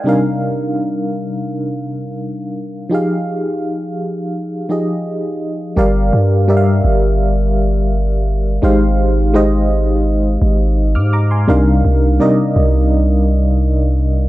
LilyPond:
<<
  \new Staff \with { instrumentName = "FM electric piano" } { \time 4/4 \key f \dorian \tempo 4 = 84 << { aes''16 r2. r8. | r1 | r1 | r2. r16 <d''' f'''>16 <bes'' d'''>16 <aes'' c'''>16~ |
<aes'' c'''>16 r2. r8. | } \\ { <c g d' ees' bes' f''>1 | <f ees' g' aes' f''>2~ <f ees' g' aes' f''>8 <f ees' g' aes' ees''>4. | <g g' bes' d'' f''>8 r8 <g g' bes' d'' e'' f''>4. r4. | <aes ees' g' c'' f''>8 r8 <aes ees' g' c'' ees''>4. r4. |
<c g d' ees' bes' f''>8 r8 <c g ees' bes' d'' ees''>4. r4. | } >> }
  \new Staff \with { instrumentName = "808-style bass" } { \clef bass \time 4/4 \key f \dorian r1 | r1 | g,,8 g,4 g,,2~ g,,8 | aes,,2~ aes,,8 aes,,8. aes,8. |
c,8 c,8 r8 c,2~ c,8 | }
>>